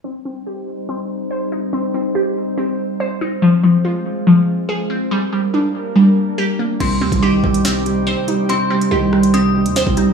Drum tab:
CC |----------------|----------------|----------------|----------------|
HH |----------------|----------------|----------------|----------------|
SD |----------------|----------------|----------------|----------------|
BD |----------------|----------------|----------------|----------------|

CC |x---------------|----------------|
HH |x--x---xx-x---x-|x--x---xx--xx-x-|
SD |--------o-------|------r-----o---|
BD |o--o--o---------|-------------o--|